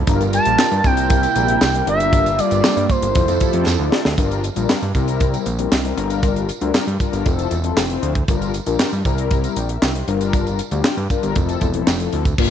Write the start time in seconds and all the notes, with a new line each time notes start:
0.07 G1 G3 D4 F4 A#4, kick, closed hi-hat, tambourine
0.21 closed hi-hat, tambourine
0.33 G3 D4 F4 A#4 A5, closed hi-hat, tambourine
0.45 A#1, closed hi-hat
0.59 snare, clap, tambourine
0.71 G2, closed hi-hat
0.78 A5
0.84 C2 C3 G3 A#3 C4 D4 E4 A#4 G5, kick, closed hi-hat, tambourine
0.91 E4
0.97 closed hi-hat, tambourine
1.10 kick, closed hi-hat, tambourine
1.23 closed hi-hat, tambourine
1.35 A#1 G3 C4 E4 A#4, closed hi-hat, tambourine
1.48 closed hi-hat
1.61 C2, snare, clap, tambourine
1.74 G3 C4 E4 A#4, closed hi-hat
1.87 G1 G3 A#3 D4 F4 A#4 E5, closed hi-hat
2.00 closed hi-hat, tambourine
2.13 kick, closed hi-hat, tambourine
2.26 closed hi-hat, tambourine
2.38 G3 D4 F4 A4 D5, closed hi-hat, tambourine
2.51 G1, closed hi-hat, tambourine
2.64 G2, snare, clap, tambourine
2.77 G2, closed hi-hat
2.90 C5, kick, closed hi-hat, tambourine
3.02 G1 G3 D4 F4 A#4, closed hi-hat, tambourine
3.15 F1 F3 A3 E4 F4 A4 C5, kick, closed hi-hat, tambourine
3.28 F2, closed hi-hat, tambourine
3.40 A3 E4 F4 G4, kick, closed hi-hat, tambourine
3.53 F2, closed hi-hat
3.66 F2, snare, tambourine
3.79 D2 A3 E4 F4 D5
3.92 snare
4.05 D2, snare, tambourine
4.17 G1 G3 D4 F4 A#4, kick, closed hi-hat, tambourine
4.31 closed hi-hat, tambourine
4.44 closed hi-hat, tambourine
4.55 A#1 G3 D4 F4 A#4, closed hi-hat, tambourine
4.69 snare, clap, tambourine
4.82 G2, closed hi-hat
4.94 C2 G3 C4 E4 A#4, kick, closed hi-hat, tambourine
5.08 closed hi-hat, tambourine
5.20 kick, closed hi-hat, tambourine
5.34 closed hi-hat, tambourine
5.46 A#1, closed hi-hat, tambourine
5.59 G3 C4 E4 A#4, closed hi-hat
5.72 C2, snare, clap, tambourine
5.84 G3 C4 E4 A#4, closed hi-hat
5.97 G1 G3 D4 F4 A#4, closed hi-hat
6.10 closed hi-hat, tambourine
6.22 kick, closed hi-hat, tambourine
6.36 closed hi-hat, tambourine
6.49 closed hi-hat, tambourine
6.61 D2 G3 D4 F4 A#4, closed hi-hat
6.74 G2, snare, clap, tambourine
6.87 G2, closed hi-hat
7.00 G3 D4 F4 A#4, kick, closed hi-hat, tambourine
7.13 G1, closed hi-hat, tambourine
7.25 F1 F3 C4 E4 A4, kick, closed hi-hat, tambourine
7.39 closed hi-hat, tambourine
7.51 E1, closed hi-hat, tambourine
7.64 F3 C4 E4 A4, closed hi-hat
7.77 F1, snare, clap, tambourine
7.90 F3 C4 E4 C5, closed hi-hat
8.02 D2, closed hi-hat
8.15 kick, closed hi-hat
8.28 G1 G3 D4 F4 A#4, kick, closed hi-hat, tambourine
8.41 closed hi-hat, tambourine
8.54 closed hi-hat, tambourine
8.66 A#1 G3 D4 F4 A#4, closed hi-hat, tambourine
8.79 snare, clap, tambourine
8.93 G2, closed hi-hat
9.05 C2 G3 C4 E4 A#4, kick, closed hi-hat, tambourine
9.18 closed hi-hat
9.31 kick, closed hi-hat, tambourine
9.44 closed hi-hat, tambourine
9.56 A#1 D5 G5, closed hi-hat, tambourine
9.69 A#4 E5, closed hi-hat
9.82 C2, snare, clap, tambourine
9.95 G4 C5, closed hi-hat
10.07 G1 G3 D4 F4 A#4, closed hi-hat
10.21 closed hi-hat, tambourine
10.33 kick, closed hi-hat, tambourine
10.47 closed hi-hat, tambourine
10.59 closed hi-hat, tambourine
10.71 D2 G3 D4 F4 G4, closed hi-hat, tambourine
10.84 snare, clap, tambourine
10.97 G2, closed hi-hat
11.10 G3 D4 F4 A#4, kick, closed hi-hat, tambourine
11.23 G1, closed hi-hat, tambourine
11.36 F1 F3 C4 E4 A4, kick, closed hi-hat, tambourine
11.49 closed hi-hat, tambourine
11.61 E1, kick, closed hi-hat, tambourine
11.74 F3 C4 E4 A4, closed hi-hat
11.87 F1, snare, clap, tambourine
12.00 F3 C4 E4 A4, closed hi-hat
12.13 D2, closed hi-hat
12.25 kick, closed hi-hat, tambourine
12.38 G1 G3 A#3 D4 F4 A#4, kick, crash, tambourine